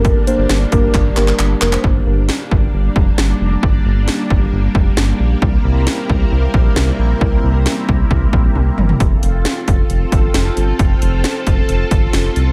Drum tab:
HH |x-x-x-x-x-x-x-x-|----------------|----------------|----------------|
CP |--------x-xxx-xx|----------------|----------------|----------------|
SD |----o-----------|----o-------o---|----o-------o---|----o-------o---|
T1 |----------------|----------------|----------------|----------------|
T2 |----------------|----------------|----------------|----------------|
FT |----------------|----------------|----------------|----------------|
BD |o-----o-o-------|o-----o---o-----|o-----o---o-----|o-----o---o-----|

HH |----------------|x-x-x-x-x-x-x-x-|x-x-x-x-x-x-x-x-|
CP |----------------|----------------|----------------|
SD |----o-----------|----o-------o---|----o-------o---|
T1 |------------o---|----------------|----------------|
T2 |--------------o-|----------------|----------------|
FT |---------------o|----------------|----------------|
BD |o-----o-o-o-----|o-----o---o-----|o-----o---o-----|